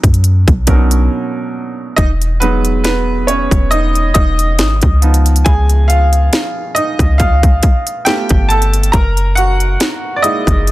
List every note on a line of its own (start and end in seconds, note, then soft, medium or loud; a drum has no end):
0.00 0.46 F#2 loud
0.00 0.63 B2 medium
0.00 0.63 F#3 medium
0.00 0.64 C#4 medium
0.00 0.64 D#4 medium
0.00 0.65 A#4 medium
0.00 kick medium
0.00 closed hi-hat medium
0.14 closed hi-hat medium
0.24 closed hi-hat medium
0.48 1.09 B1 loud
0.48 kick loud
0.48 closed hi-hat soft
0.67 1.98 B2 medium
0.67 1.98 F#3 medium
0.67 1.98 C#4 medium
0.67 0.75 D4 soft
0.67 1.99 A#4 medium
0.67 kick medium
0.67 closed hi-hat medium
0.75 1.97 D#4 medium
0.91 closed hi-hat medium
1.96 3.48 E1 loud
1.96 2.09 D#4 medium
1.96 2.06 D#5 loud
1.96 kick loud
1.96 closed hi-hat medium
2.22 closed hi-hat soft
2.40 4.98 F#3 medium
2.40 4.98 G#3 medium
2.40 2.82 B3 medium
2.40 3.71 D#4 medium
2.40 2.82 B4 medium
2.40 closed hi-hat medium
2.65 closed hi-hat soft
2.84 3.26 B3 medium
2.84 3.25 B4 medium
2.84 snare loud
2.84 closed hi-hat medium
3.27 3.69 C#4 medium
3.27 3.73 C#5 medium
3.27 closed hi-hat medium
3.51 4.13 E1 loud
3.51 kick medium
3.51 closed hi-hat medium
3.71 4.13 D#4 medium
3.71 4.13 D#5 loud
3.71 closed hi-hat medium
3.95 closed hi-hat soft
4.14 4.61 E1 loud
4.14 4.99 D#4 medium
4.14 4.98 D#5 loud
4.14 kick medium
4.14 closed hi-hat medium
4.39 closed hi-hat medium
4.59 4.81 G#1 medium
4.59 snare loud
4.59 closed hi-hat medium
4.81 5.44 C#2 loud
4.81 kick medium
4.81 closed hi-hat soft
5.02 5.61 F3 medium
5.02 5.62 B3 medium
5.02 5.62 D#4 medium
5.02 closed hi-hat medium
5.14 closed hi-hat medium
5.26 closed hi-hat medium
5.36 closed hi-hat medium
5.45 6.29 C#2 loud
5.45 5.87 G#4 medium
5.45 5.90 G#5 medium
5.45 kick loud
5.45 closed hi-hat medium
5.69 closed hi-hat soft
5.88 6.73 F4 medium
5.88 6.78 F5 medium
5.88 closed hi-hat medium
6.13 closed hi-hat soft
6.33 snare loud
6.33 closed hi-hat medium
6.75 7.17 D#4 medium
6.75 7.20 D#5 medium
6.75 closed hi-hat medium
6.99 7.61 C#2 medium
6.99 kick medium
6.99 closed hi-hat medium
7.18 8.03 F4 medium
7.18 8.09 F5 medium
7.18 kick medium
7.18 closed hi-hat soft
7.43 kick medium
7.43 closed hi-hat soft
7.63 kick medium
7.63 closed hi-hat medium
7.87 closed hi-hat medium
8.05 8.66 A3 medium
8.05 8.66 B3 soft
8.05 8.66 F4 medium
8.05 8.48 G4 medium
8.05 8.51 G5 loud
8.05 snare loud
8.05 closed hi-hat medium
8.29 8.91 G1 loud
8.29 kick loud
8.29 closed hi-hat soft
8.49 8.91 A4 medium
8.49 8.94 A5 medium
8.49 closed hi-hat medium
8.62 closed hi-hat medium
8.73 closed hi-hat medium
8.83 closed hi-hat medium
8.92 9.77 F#1 loud
8.92 9.35 A#4 medium
8.92 9.38 A#5 loud
8.92 kick loud
8.92 closed hi-hat medium
9.17 closed hi-hat soft
9.35 10.14 F#4 medium
9.35 10.13 F#5 loud
9.35 closed hi-hat medium
9.60 closed hi-hat soft
9.80 snare loud
9.80 closed hi-hat medium
10.16 10.23 D5 medium
10.22 10.72 G#3 medium
10.22 10.72 A#3 medium
10.22 10.72 D#4 medium
10.22 10.72 E4 medium
10.22 10.72 D#5 loud
10.22 closed hi-hat medium
10.47 10.72 F#1 loud
10.47 kick medium
10.47 closed hi-hat medium
10.67 closed hi-hat medium